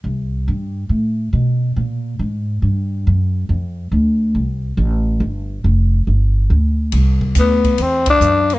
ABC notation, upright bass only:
X:1
M:4/4
L:1/8
Q:"Swing" 1/4=140
K:C
V:1 name="Upright bass" clef=bass
C,,2 G,,2 A,,2 B,,2 | ^A,,2 ^G,,2 =G,,2 ^F,,2 | F,,2 D,,2 C,,2 A,,,2 | G,,,2 F,,,2 G,,,2 D,,2 |
C,,2 D,,2 E,,2 ^F,,2 |]